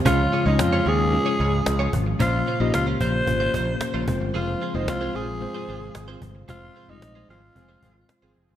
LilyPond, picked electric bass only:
\new Staff \with { instrumentName = "Picked electric bass" } { \clef bass \time 4/4 \key f \minor \tempo 4 = 112 des,8 r16 des,16 f,8 ees,8. r16 des,8 des,8 aes,,8 | bes,,8 r16 bes,,16 des,8 bes,,8 aes,,8 bes,,8 r16 bes,,16 f,,16 g,,16 | f,,8 r16 f,,16 c,8 bes,,8. r16 aes,,8 aes,,8 g,,8 | f,,8 r16 f,,16 bes,,8 aes,,8 f,,8 aes,,8 r16 aes,,16 f,,16 g,,16 | }